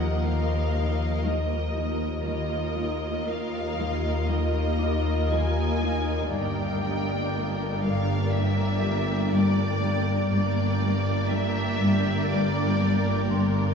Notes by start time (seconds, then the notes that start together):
Already playing: D#2 F3 A#3 A#4 D#5 F#5
0.24 D#3 F5
0.75 D#4
1.25 D#3 D#5
1.76 D#4
2.26 D#2 D#3 A#3 F4 A#4 D#5 F5
2.77 D#4
3.26 D#4 A#4 F5
3.77 D#3
4.27 D#3 D#5
4.79 D#4 D6
5.31 D#3 G#5
5.83 D#4
6.32 G1 G2 A#3 D4 A#4 D5 G5
6.84 G3
7.34 G3
7.82 G2 F5
8.32 G2 E5
8.82 G3
9.32 G2 D5
9.82 G3
10.31 G1 G2 A#3 D4 A#4 D5 G5
10.81 G3
11.31 G3 E5
11.81 G2
12.30 G2 D5
12.81 G3
13.31 G2 C6